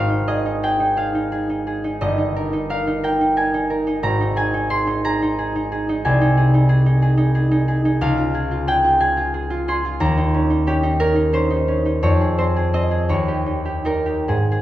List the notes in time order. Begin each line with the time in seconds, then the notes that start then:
Already playing: G#1 C4 G#4 C5 D#5 F5
0.10 D#4
0.27 G#4 D#5
0.46 D#4
0.63 G#4 G5
0.80 D#4
0.97 G#4 F5
1.15 D#4
1.32 G#4
1.50 D#4
1.67 G#4
1.84 D#4
2.01 G1 D#5
2.18 D#4
2.36 A#4
2.53 D#4
2.70 A#4 F5
2.87 D#4
3.03 A#4 G5
3.21 D#4
3.37 A#4 G#5
3.54 D#4
3.70 A#4
3.87 D#4
4.03 G#1 A#5
4.21 D#4
4.36 G#4 G#5
4.54 D#4
4.70 G#4 C6
4.87 D#4
5.04 G#4 A#5
5.22 D#4
5.39 G#4
5.55 D#4
5.72 G#4
5.89 D#4
6.05 C2 G#5
6.21 D#4
6.37 G#4
6.54 D#4
6.69 G#4
6.86 D#4
7.02 G#4
7.17 D#4
7.35 G#4
7.51 D#4
7.68 G#4
7.85 D#4
8.01 C#2 F5
8.18 F4
8.34 G#4
8.51 F4
8.67 G#4 G5
8.84 F4
9.00 G#4 G#5
9.17 F4
9.34 G#4
9.50 F4
9.68 G#4 C6
9.85 F4
10.00 D#2 A#5
10.17 D#4
10.34 C#4
10.50 D#4
10.67 C#4 G4
10.83 D#4
11.00 C#4 A#4
11.15 D#4
11.33 C#4 C5
11.51 D#4
11.68 C#4
11.85 D#4
12.03 F2 C#5
12.21 G#4
12.38 C4 C5
12.56 G#4
12.73 C4 D#5
12.91 G#4
13.09 D#2 C#5
13.28 G4
13.46 D#4
13.65 G4
13.85 D#4 A#4
14.06 G4
14.28 G#2 G#4
14.52 G#4